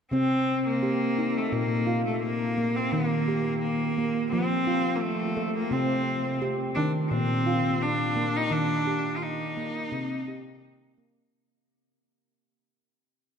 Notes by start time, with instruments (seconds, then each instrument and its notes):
0.11 handpan C3 C4, cello C4
0.68 cello A#3
0.83 handpan G4
1.18 handpan D#4
1.38 cello A3
1.52 handpan A#2, cello A#3
1.87 handpan F4
2.07 cello A3
2.23 cello A#3
2.58 handpan A#3
2.76 cello C4
2.92 handpan D#3, cello A#3
3.28 handpan G4
3.62 cello A#3
3.98 handpan A#3
4.32 handpan F3, cello C4
4.67 handpan F4
4.96 cello A#3
5.02 cello A3
5.37 handpan A3
5.57 cello A#3
5.71 handpan C3 C4, cello C4
6.42 handpan G4
6.75 handpan D#3, cello D4
7.11 handpan A#2, cello C4
7.47 handpan F4
7.83 cello D4
8.16 handpan A#3
8.37 cello D#4
8.51 handpan D#3, cello D4
8.87 handpan G4
9.17 cello F4
9.23 cello D#4
9.57 handpan A#3
9.92 handpan C3
10.28 handpan G4
10.98 handpan A#3